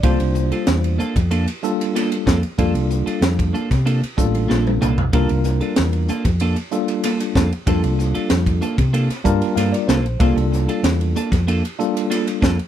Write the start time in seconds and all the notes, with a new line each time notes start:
0.03 C2 G3 A#3 D4 F4 A4 C5, kick, ride
0.20 C2, muted clean electric guitar stroke, ride
0.35 muted clean electric guitar stroke, hi-hat pedal
0.52 D4 F4 A4, ride
0.67 E2, muted clean electric guitar stroke, snare, ride
0.84 ride
0.98 A#3 D4 F4 A4, muted fingered electric bass stroke, hi-hat pedal
1.16 F2, muted clean electric guitar stroke, kick, ride
1.31 A#3 D4 F4 A4, ride
1.47 muted clean electric guitar stroke, ride
1.63 G3 A#3 D4 F4 A4, muted clean electric guitar stroke, hi-hat pedal
1.81 ride
1.95 A#3 D4 F4 A4, snare, ride
2.11 muted clean electric guitar stroke, ride
2.26 F2 A#3 D4 F4 A4, kick, snare, hi-hat pedal
2.43 muted clean electric guitar stroke, ride
2.58 F2 G3 A#3 D4 F4 A4, kick, ride
2.74 C2, muted clean electric guitar stroke, ride
2.90 muted clean electric guitar stroke, hi-hat pedal
3.06 D4 F4 A4, ride
3.21 F2, muted clean electric guitar stroke, snare, ride
3.39 kick, ride
3.53 A#3 D4 F4 A4, hi-hat pedal
3.70 C3, muted clean electric guitar stroke, kick, snare, ride
3.86 A#3 D4 F4 A4, ride
4.02 muted clean electric guitar stroke, muted fingered electric bass stroke, ride
4.17 A1 G3 A#3 D4 F4 A4, muted clean electric guitar stroke, kick, hi-hat pedal
4.35 ride
4.48 A#1 A#3 D4 F4 A4, snare
4.66 muted clean electric guitar stroke, high tom
4.81 C2 A#3 D4 F4 A4, hi-hat pedal, mid tom
4.98 muted clean electric guitar stroke, floor tom
5.13 C2 G3 A#3 D4 F4 A4 A#4, kick, ride
5.29 C2, muted clean electric guitar stroke, ride
5.44 muted clean electric guitar stroke, snare, hi-hat pedal
5.61 D4 F4 A4, ride
5.76 E2, muted clean electric guitar stroke, snare, ride
5.93 ride
6.08 A#3 D4 F4 A4, muted fingered electric bass stroke, hi-hat pedal
6.25 F2, muted clean electric guitar stroke, kick, ride
6.40 A#3 D4 F4 A4, ride
6.56 muted clean electric guitar stroke, ride
6.71 G3 A#3 D4 F4 A4, muted clean electric guitar stroke, hi-hat pedal
6.88 ride
7.03 A#3 D4 F4 A4, snare, ride
7.20 muted clean electric guitar stroke, ride
7.35 F2 A#3 D4 F4 A4, kick, snare, hi-hat pedal
7.52 muted clean electric guitar stroke, ride
7.67 F2 G3 A#3 D4 F4 A4, kick, ride
7.83 C2, muted clean electric guitar stroke, ride
7.99 muted clean electric guitar stroke, snare, hi-hat pedal
8.15 D4 F4 A4, muted fingered electric bass stroke, ride
8.30 F2, muted clean electric guitar stroke, snare, ride
8.46 kick, ride
8.61 A#3 D4 F4 A4, hi-hat pedal
8.78 C3, muted clean electric guitar stroke, kick, ride
8.93 A#3 D4 F4 A4, ride
9.09 muted fingered electric bass stroke, muted clean electric guitar stroke, snare, ride
9.24 G2 G3 A#3 D4 F4 A#4 A5, muted clean electric guitar stroke, kick, hi-hat pedal
9.42 ride
9.56 G2 A#3 D4 F4 A4 F5, snare, ride
9.72 D5, muted clean electric guitar stroke, ride
9.88 C2 A#3 D4 F4 A4 C5, snare, hi-hat pedal
10.05 A#1, muted clean electric guitar stroke, ride
10.20 C2 G3 A#3 D4 F4 A4, kick, ride
10.36 C2, muted clean electric guitar stroke, ride
10.52 muted clean electric guitar stroke, snare, hi-hat pedal
10.69 D4 F4 A4, ride
10.83 E2, muted clean electric guitar stroke, snare, ride
11.01 ride
11.16 A#3 D4 F4 A4, muted fingered electric bass stroke, hi-hat pedal
11.31 F2, muted clean electric guitar stroke, kick, snare, ride
11.47 A#3 D4 F4 A4, ride
11.64 muted clean electric guitar stroke, ride
11.79 G3 A#3 D4 F4 A4, muted clean electric guitar stroke, hi-hat pedal
11.97 ride
12.10 A#3 D4 F4 A4, snare, ride
12.27 muted clean electric guitar stroke, ride
12.41 F2 A#3 D4 F4 A4, kick, snare, hi-hat pedal
12.58 muted clean electric guitar stroke, ride